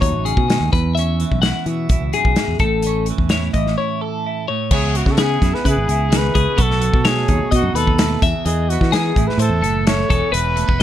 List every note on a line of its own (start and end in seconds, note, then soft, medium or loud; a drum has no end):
0.00 0.12 D#2 medium
0.00 0.69 F#2 medium
0.00 0.68 F#3 medium
0.00 0.71 A3 medium
0.00 0.69 D#4 medium
0.00 0.25 C#5 medium
0.00 kick medium
0.00 closed hi-hat medium
0.12 0.33 A1 medium
0.25 0.48 C#3 medium
0.25 0.72 G#4 medium
0.25 closed hi-hat medium
0.37 0.57 B2 medium
0.37 kick medium
0.48 0.72 D#3 medium
0.48 snare loud
0.48 closed hi-hat medium
0.60 0.70 D#2 medium
0.72 2.13 E2 medium
0.72 1.24 E2 medium
0.72 0.96 B4 medium
0.72 kick medium
0.72 closed hi-hat medium
0.95 2.86 C#4 medium
0.95 1.41 E5 medium
0.95 closed hi-hat medium
1.20 3.08 E3 medium
1.20 closed hi-hat medium
1.32 1.52 B1 medium
1.32 kick medium
1.42 1.92 E4 medium
1.42 1.67 F#5 medium
1.42 snare medium
1.42 closed hi-hat medium
1.66 2.60 B2 medium
1.66 1.86 E3 medium
1.66 2.13 E5 medium
1.66 closed hi-hat soft
1.89 2.00 B1 medium
1.89 3.32 E4 medium
1.89 kick medium
1.89 closed hi-hat medium
2.00 2.11 C#2 medium
2.13 2.38 F#2 medium
2.13 2.60 G#4 medium
2.13 closed hi-hat medium
2.25 2.35 B1 medium
2.25 kick medium
2.36 2.61 G#2 medium
2.36 snare loud
2.36 closed hi-hat medium
2.48 2.58 E2 medium
2.59 3.11 A1 medium
2.59 4.46 A2 medium
2.59 3.07 A4 medium
2.59 kick medium
2.59 closed hi-hat medium
2.82 closed hi-hat medium
2.87 4.46 C#4 medium
3.06 closed hi-hat medium
3.10 3.55 E3 medium
3.18 3.49 E2 medium
3.18 kick medium
3.29 3.78 E4 medium
3.29 3.53 C#5 medium
3.29 snare loud
3.29 closed hi-hat medium
3.53 3.74 A1 medium
3.53 4.46 E3 medium
3.53 3.77 D#5 medium
3.53 kick medium
3.53 closed hi-hat medium
3.67 snare soft
3.78 4.25 E4 soft
3.78 4.01 C#5 medium
4.01 4.45 A4 medium
4.01 4.48 A4 medium
4.26 4.46 E4 soft
4.48 4.69 A2 medium
4.48 4.71 C#5 medium
4.71 5.02 C#2 medium
4.71 4.95 C#3 medium
4.71 4.94 E3 medium
4.71 5.19 B3 medium
4.71 5.43 E4 medium
4.71 4.98 G#4 medium
4.71 5.18 C#5 medium
4.71 kick medium
4.71 crash medium
4.95 6.59 E3 medium
4.95 5.13 F#4 medium
4.95 closed hi-hat medium
5.06 5.37 C#3 medium
5.06 kick medium
5.06 snare soft
5.11 5.22 A4 medium
5.17 6.57 B3 medium
5.17 5.65 G#4 medium
5.17 5.56 G#4 loud
5.17 snare loud
5.17 closed hi-hat medium
5.42 5.52 F#2 medium
5.42 5.65 E4 medium
5.42 kick medium
5.42 snare soft
5.42 closed hi-hat medium
5.54 5.65 B4 medium
5.54 snare soft
5.65 5.75 C#3 medium
5.65 5.89 E4 medium
5.65 6.18 G#4 medium
5.65 5.88 B4 medium
5.65 kick medium
5.65 closed hi-hat medium
5.76 5.87 G#1 medium
5.88 6.29 C#2 medium
5.88 6.57 E4 medium
5.88 6.34 G#4 medium
5.88 closed hi-hat medium
6.10 6.34 D#3 medium
6.10 snare loud
6.10 closed hi-hat medium
6.17 6.63 B4 medium
6.35 6.46 C#2 medium
6.35 6.56 C#3 medium
6.35 6.58 G#4 medium
6.35 kick medium
6.35 closed hi-hat medium
6.56 6.89 B1 loud
6.56 8.21 B2 medium
6.56 8.19 F#4 medium
6.56 7.04 A4 medium
6.56 kick loud
6.56 closed hi-hat medium
6.62 7.09 A4 loud
6.71 snare soft
6.81 8.19 F#3 medium
6.81 closed hi-hat medium
6.94 7.24 B2 medium
6.94 kick medium
7.05 7.98 A3 medium
7.05 7.53 G#4 medium
7.05 7.51 C#5 medium
7.05 snare loud
7.05 closed hi-hat medium
7.17 snare soft
7.28 7.39 D#2 medium
7.28 7.51 D#4 medium
7.28 kick medium
7.28 closed hi-hat medium
7.51 7.62 B2 medium
7.51 7.75 D#4 medium
7.51 7.78 F#4 medium
7.51 7.75 D#5 medium
7.51 kick medium
7.51 closed hi-hat medium
7.63 7.73 F#2 medium
7.74 8.15 D#2 medium
7.74 8.20 D#4 medium
7.74 8.23 A4 medium
7.74 8.22 B4 medium
7.74 closed hi-hat medium
7.87 kick medium
7.99 8.22 A3 medium
7.99 snare loud
7.99 closed hi-hat medium
8.22 8.33 E2 medium
8.22 9.16 E2 medium
8.22 9.14 G#4 medium
8.22 8.45 E5 medium
8.22 kick loud
8.22 closed hi-hat medium
8.45 8.76 E2 loud
8.45 9.39 E3 medium
8.45 8.71 G#4 medium
8.45 8.92 D#5 medium
8.45 closed hi-hat medium
8.69 9.15 B3 medium
8.69 8.95 F#4 medium
8.69 closed hi-hat medium
8.81 9.11 E3 medium
8.81 kick medium
8.81 snare soft
8.92 9.14 D#4 medium
8.92 9.39 G#4 medium
8.92 9.29 G#4 medium
8.92 snare loud
8.92 closed hi-hat medium
9.16 9.26 A1 medium
9.16 10.07 A2 medium
9.16 9.86 E4 medium
9.16 kick medium
9.16 closed hi-hat medium
9.27 9.39 B4 medium
9.27 snare soft
9.38 9.49 A2 medium
9.38 10.31 E3 medium
9.38 9.83 A4 medium
9.38 9.63 C5 medium
9.38 closed hi-hat medium
9.49 9.60 E2 medium
9.62 10.03 F#1 medium
9.62 10.09 A3 medium
9.62 10.09 A4 medium
9.62 closed hi-hat medium
9.87 10.78 E4 medium
9.87 10.35 C#5 medium
9.87 snare loud
9.87 closed hi-hat medium
10.09 10.20 E1 loud
10.09 10.83 E2 medium
10.09 10.83 G#4 medium
10.09 10.32 A4 medium
10.09 kick loud
10.09 closed hi-hat medium
10.32 10.63 E1 medium
10.32 10.83 E3 medium
10.32 10.79 B4 medium
10.32 10.83 B4 loud
10.32 closed hi-hat medium
10.56 10.68 A3 medium
10.56 closed hi-hat medium
10.68 10.83 F1 medium
10.68 10.83 B3 soft
10.68 kick medium
10.79 10.83 D#4 medium